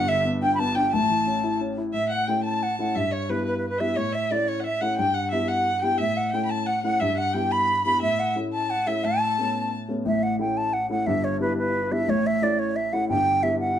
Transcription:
Already playing: grand piano G1 G2
0.08 grand piano D3, violin E5, flute E5
0.25 grand piano B3
0.42 grand piano D4, flute G5, violin G5
0.55 violin A5, flute B5
0.59 grand piano B3, flute A5
0.75 grand piano D4, violin G5, flute G5
0.91 grand piano A1 A2, violin A5, flute A5
1.10 grand piano E3
1.27 grand piano C#4
1.44 grand piano E4
1.61 grand piano C#4
1.78 grand piano E4
1.93 grand piano A2, violin E5, flute E5
2.09 violin F#5, flute F#5
2.27 grand piano A3 C#4 E4, violin G5, flute G5
2.44 violin A5, flute A5
2.63 flute F#5
2.79 grand piano A3 C#4 E4, flute F#5
2.95 grand piano G2, violin E5, flute E5
3.11 violin C#5, flute C#5
3.29 grand piano G3 B3 E4, violin B4, flute B4
3.45 violin B4, flute B4
3.58 flute B4
3.67 violin B4, flute B4
3.78 grand piano G3 B3 E4, violin E5, flute E5
3.96 grand piano A2, violin C#5, flute C#5
4.12 violin E5, flute E5
4.30 grand piano A3 C#4 E4, violin D5, flute D5
4.48 violin C#5, flute C#5
4.60 violin E5 F#5
4.65 flute E5
4.81 grand piano A3 C#4 E4, violin F#5, flute F#5
4.97 grand piano G2, violin G5, flute G5
5.14 violin F#5, flute F#5
5.31 grand piano G3 B3 E4, violin E5, flute E5
5.48 violin F#5, flute F#5
5.82 grand piano G3 B3 E4, violin G5, flute G5
5.98 grand piano A2, violin E5, flute E5
6.17 flute F#5
6.32 grand piano A3 C#4 E4, violin G5, flute G5
6.45 violin B5
6.49 violin A5, flute A5
6.67 violin F#5, flute F#5
6.83 grand piano A3 C#4 E4, violin F#5, flute F#5
7.00 grand piano G2, violin E5, flute E5
7.17 violin F#5, flute F#5
7.33 grand piano G3 B3 E4, violin G5, flute G5
7.51 violin B5, flute B5
7.84 grand piano G3 B3 E4, violin B5, flute B5
8.01 grand piano A2, violin E5, flute E5
8.19 flute F#5
8.36 grand piano A3 C#4 E4
8.53 flute A5, violin A5
8.70 flute F#5
8.87 grand piano A3 C#4 E4, violin E5, flute E5
9.04 grand piano A2, flute A5, violin A5
9.38 grand piano A3 B3 C#4
9.88 grand piano A3 B3 C#4
10.05 grand piano A1 A2, flute E5
10.23 flute F#5
10.39 grand piano A3 C#4 E4, flute G5
10.57 flute A5
10.73 flute F#5
10.89 grand piano A3 C#4 E4, flute F#5
11.06 grand piano G1 G2, flute E5
11.24 flute C#5
11.40 grand piano G3 B3 E4, flute B4
11.58 flute B4
11.91 grand piano G3 B3 E4, flute E5
12.08 grand piano A1 A2, flute C#5
12.26 flute E5
12.42 grand piano A3 C#4 E4, flute D5
12.59 flute C#5
12.76 flute E5
12.93 grand piano A3 C#4 E4, flute F#5
13.09 grand piano G1 G2, flute G5
13.43 grand piano G3 B3 E4, flute E5
13.60 flute F#5

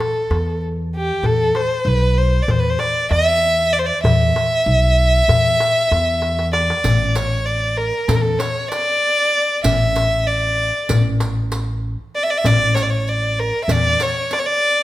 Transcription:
Already playing: violin A4
0.00 darbuka tek
0.30 upright bass E2, darbuka tek
0.96 violin G4
1.23 upright bass E2, violin A4, darbuka dum
1.55 violin C5, darbuka tek
1.85 upright bass B1, violin B4
2.18 violin C5
2.42 violin D5
2.48 upright bass E2, violin C5, darbuka dum
2.59 violin B4
2.70 violin C5
2.79 violin D5, darbuka tek
3.10 upright bass E2, violin E5, darbuka tek
3.73 violin D5
3.79 violin C5
3.86 violin D5
4.03 upright bass E2, violin E5, darbuka dum
4.36 darbuka tek
4.66 upright bass B1, darbuka ka
4.99 darbuka ka
5.28 upright bass E2, darbuka dum
5.60 darbuka tek
5.91 upright bass E2, darbuka tek
6.22 darbuka tek
6.39 darbuka ka
6.53 violin D5, darbuka tek
6.70 darbuka ka
6.84 upright bass A1, riq, darbuka dum
7.15 violin C#5, riq, darbuka tek
7.46 violin D5, riq
7.77 violin A#4
8.08 upright bass E2, violin A4, riq, darbuka dum
8.15 violin A#4
8.21 violin A4
8.39 violin C#5, riq, darbuka tek
8.68 violin D5, riq, darbuka tek
9.64 upright bass A1, violin E5, riq, darbuka dum
9.96 riq, darbuka tek
10.27 violin D5, riq
10.89 upright bass A1, riq, darbuka dum
11.20 riq, darbuka tek
11.52 riq, darbuka tek
12.15 violin D5
12.23 violin E5
12.30 violin D5
12.38 violin E5
12.44 upright bass A1, violin D5, riq, darbuka dum
12.74 violin C#5, riq, darbuka tek
12.83 violin D5
12.90 violin C#5
13.08 violin D5, riq
13.40 violin A#4
13.64 upright bass E2, violin E5
13.69 violin D5, riq, darbuka dum
14.00 violin C#5, riq, darbuka tek
14.31 violin D5, riq, darbuka tek
14.39 violin C#5
14.46 violin D5

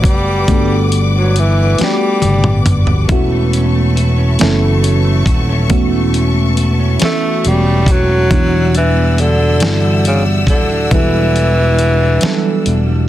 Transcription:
Already playing: fm electric piano A3 B3 D4 F#4 G4, string section B4 D5 F#5 D6
0.01 fretless electric bass F#1, tenor saxophone F#3, kick
0.05 tenor saxophone G3, closed hi-hat
0.48 fretless electric bass G1, fm electric piano A3 B3 D4 F#4 A4, kick, closed hi-hat
0.92 closed hi-hat
1.17 tenor saxophone F#3
1.36 tenor saxophone E3, closed hi-hat
1.78 fm electric piano A3 B3 D4 F#4 G4, muted fretless electric bass stroke, snare, closed hi-hat
1.83 tenor saxophone G3
2.22 fretless electric bass G1, closed hi-hat, high tom
2.44 mid tom
2.66 closed hi-hat, mid tom
2.87 floor tom
3.08 fretless electric bass E1, clean electric guitar E3 F#4, fm electric piano A3 B3 C#4 E4 F#4, string section E5 A5 C#6, kick, closed hi-hat
3.31 clean electric guitar A3
3.53 clean electric guitar C#4, closed hi-hat
3.75 clean electric guitar A3
3.96 clean electric guitar F#4, closed hi-hat
4.18 clean electric guitar C#4
4.39 fretless electric bass F#1, clean electric guitar E3 F#4, fm electric piano A3 B3 C#4 E4, snare, closed hi-hat
4.43 fm electric piano A4
4.62 clean electric guitar A3
4.84 clean electric guitar C#4, closed hi-hat
5.05 clean electric guitar A3
5.26 fretless electric bass D#1, clean electric guitar F#4, kick, closed hi-hat
5.49 clean electric guitar C#4
5.69 fretless electric bass E1, clean electric guitar E3 F#4, fm electric piano A3 B3 C#4 E4 F#4, kick, closed hi-hat
5.91 clean electric guitar A3
6.13 clean electric guitar C#4, closed hi-hat
6.34 clean electric guitar A3
6.57 clean electric guitar F#4, closed hi-hat
6.80 clean electric guitar C#4
6.99 clean electric guitar E3 F#4, fm electric piano A3 B3 C#4 E4 A4, muted fretless electric bass stroke, snare, closed hi-hat
7.04 tenor saxophone A3
7.23 clean electric guitar A3
7.43 fretless electric bass E1, clean electric guitar C#4, closed hi-hat
7.48 tenor saxophone G3
7.66 clean electric guitar A3
7.86 clean electric guitar F#4, kick, closed hi-hat
7.92 tenor saxophone F#3
8.09 clean electric guitar C#4
8.30 fretless electric bass E1, fm electric piano E3 B3 D4 E4, clean electric guitar E3 F#4, string section D5 E5 F#5 E6, kick, closed hi-hat
8.34 fm electric piano F#4
8.52 clean electric guitar G3
8.74 tenor saxophone E3, clean electric guitar D4, closed hi-hat
8.96 clean electric guitar G3
9.17 tenor saxophone D3, clean electric guitar F#4, closed hi-hat
9.39 clean electric guitar D4
9.60 fretless electric bass G1, clean electric guitar E3 F#4, fm electric piano G3 B3 E4 D5, snare, closed hi-hat
9.65 fm electric piano F#4
9.83 clean electric guitar G3
10.05 tenor saxophone C#3, clean electric guitar D4, closed hi-hat
10.26 clean electric guitar G3
10.47 fretless electric bass D#1, tenor saxophone D3, clean electric guitar F#4, kick, closed hi-hat
10.71 clean electric guitar D4
10.91 fretless electric bass E1, clean electric guitar E3 F#4, tenor saxophone E3, fm electric piano G3 B3 D4 E4, kick, closed hi-hat
10.95 fm electric piano A4
11.14 clean electric guitar G3
11.35 clean electric guitar D4, closed hi-hat
11.57 clean electric guitar G3
11.79 clean electric guitar F#4, closed hi-hat
12.00 clean electric guitar D4
12.21 clean electric guitar E3 F#4, fm electric piano F#3 B3 D4 E4 A4, muted fretless electric bass stroke, snare, closed hi-hat
12.28 fm electric piano G3
12.44 clean electric guitar G3
12.66 fretless electric bass E1, clean electric guitar D4, closed hi-hat
12.87 clean electric guitar G3

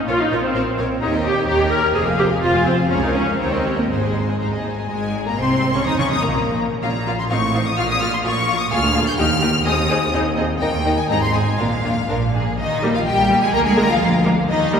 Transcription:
0.08 double bass section A#1, cello section A#2, viola section F4, violin section A#4 C#5 F5
0.21 viola section D#4
0.31 double bass section A#1, cello section A#2, viola section F4, violin section A#4 C#5 F5
0.44 viola section C4
0.54 double bass section A#1, cello section A#2, violin section A#4 C#5 F5
0.78 double bass section A#1, cello section A#2, violin section A#4 C#5 F5
1.01 double bass section D#2, cello section D#2, viola section D#4, violin section G4 C#5 A#5
1.13 violin section A#4 D#5 G5
1.25 viola section G4, violin section G4 C#5 A#5
1.36 violin section A#4 D#5 G5
1.48 cello section D#2, double bass section D#2, viola section G4, violin section G4 C#5 A#5
1.60 violin section A#4 D#5 G5
1.71 violin section G4 C#5 A#5, viola section A#4
1.83 violin section A#4 D#5 G5
1.94 double bass section F1, cello section F2, violin section F4 C5 F5, viola section G#4
2.06 violin section G#4 F5 G#5
2.17 violin section F4 C5 F5, viola section G4
2.29 violin section G#4 F5 G#5
2.42 double bass section F1, cello section F2, violin section F4 C5 F5, viola section F4
2.53 violin section G#4 F5 G#5
2.65 viola section C4, violin section F4 C5 F5
2.77 violin section G#4 F5 G#5
2.88 cello section C#2, double bass section C#2, viola section C#4, violin section G#4 C#5 A#5
3.00 viola section D#4, violin section A#4 F5 G#5
3.13 viola section C#4, violin section G#4 C#5 A#5
3.26 violin section A#4 F5 G#5
3.38 cello section D#2, double bass section D#2, viola section C4, violin section G4 C#5 A#5
3.51 violin section A#4 D#5 G5
3.63 violin section G4 C#5 A#5
3.76 viola section A#3, violin section A#4 D#5 G5
3.89 double bass section G#1, cello section G#2, viola section G#3, violin section D#4 C5 C6
4.02 violin section G#4 D#5 G#5
4.15 violin section D#4 C5 C6
4.27 violin section G#4 D#5 G#5
4.39 double bass section G#1, cello section G#2, violin section D#4 C5 A#5
4.53 violin section G#4 D#5
4.65 violin section D#4 C5 G#5
4.78 violin section G#4 D#5
4.90 double bass section G#1, cello section G#2, viola section G#3, violin section G#3 G#5
5.26 cello section A#2, violin section A#3 A#5, viola section A#3
5.38 double bass section C2, cello section C3, violin section C4 C6, viola section C4
5.74 cello section C#3, violin section C#4 C#6, viola section C#4
5.86 double bass section D#2, cello section D#3, violin section D#4 D#6, viola section D#4
5.98 cello section C#3, violin section C#4 C#6, viola section C#4
6.10 double bass section D#2, cello section D#3, violin section D#4 D#6, viola section D#4
6.22 double bass section A#1, cello section A#2, violin section A#3 A#5, viola section A#3
6.83 double bass section A#1, cello section A#2, viola section C#4 F4, violin section F4 F5 A#5
7.07 viola section C#4 F4, violin section F4 F5
7.19 violin section C6
7.30 double bass section A1, cello section A2, viola section C4 D#4, violin section F4 F5 C#6
7.54 viola section C4 D#4, violin section F4 F5
7.67 violin section D#6
7.77 double bass section A#1, cello section A#2, viola section A#3 F4, violin section F4 F5 F6
7.90 violin section D#6
8.01 viola section A#3 F4, violin section F4 F5 F6
8.13 violin section C6
8.24 double bass section A#1, cello section A#2, viola section A#3 F4, violin section F4 F5 C#6
8.48 viola section A#3 F4, violin section F4 F5
8.60 violin section D#6
8.71 double bass section D2, cello section D2, viola section A#3 F4, violin section G#4 F5 F6
8.94 viola section A#3 F4, violin section G#4 F5
9.08 violin section G6
9.18 double bass section D#2, cello section D#2, viola section A#3 D#4, violin section G4 G5 F6
9.41 viola section A#3 D#4, violin section G4 G5
9.65 cello section D#2, double bass section D#2, viola section C4 D#4, violin section G#4 D#5 D#6
9.90 viola section C4 D#4, violin section G#4 D#5
10.13 double bass section D#2, cello section D#2, viola section C4 D#4, violin section G#4 D#5
10.38 viola section C4 D#4, violin section G#4 D#5
10.60 cello section D#2, double bass section D#2, viola section A#3 D#4, violin section A#4 D#5 G5
10.85 viola section A#3 D#4, violin section A#4 D#5
10.97 violin section G#5
11.10 double bass section G#1, cello section G#2, viola section C4 D#4, violin section G#4 D#5 A#5
11.22 violin section C6
11.34 viola section C4 D#4, violin section G#4 D#5 G#5
11.59 double bass section A#1, cello section A#2, viola section A#3 D4, violin section F4 A#4 F5
11.84 viola section A#3 D4, violin section F4 A#4
12.09 double bass section A#1, cello section A#2, viola section A#3 D4, violin section A#4
12.34 viola section A#3 D4, violin section G#4
12.58 double bass section D#2, cello section D#3, violin section D#4 D#5
12.83 viola section G3 A#3
12.94 cello section F3, violin section F4 F5
13.05 double bass section A#1, cello section G3, violin section G4 G5
13.30 viola section G3 A#3
13.42 cello section G#3, violin section G#4 G#5
13.53 double bass section D2, cello section A#3, violin section A#4 A#5
13.65 cello section G#3, violin section G#4 G#5
13.77 viola section G#3 A#3, cello section A#3, violin section A#4 A#5
13.89 cello section F3, violin section F4 F5
14.02 double bass section D2
14.24 viola section G#3 A#3
14.48 double bass section D#2, cello section D#3, violin section D#4 D#5
14.72 viola section G3 A#3

